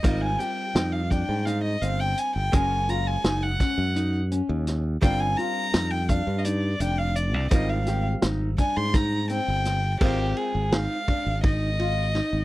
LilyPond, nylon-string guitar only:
\new Staff \with { instrumentName = "Nylon-string guitar" } { \time 7/8 \key g \phrygian \tempo 4 = 84 ees'8 g'8 ees'8 d'8 ees'8 c'4 | des'8 f'8 ees'8 des'8 ees'8 des'4 | d'8 f'8 ees'8 d'8 ees'8 d'4 | ees'8 g'8 ees'8 d'8 ees'8 c'4 |
c'4 ees'8 d'8 ees'8 f'8 ees'8 | }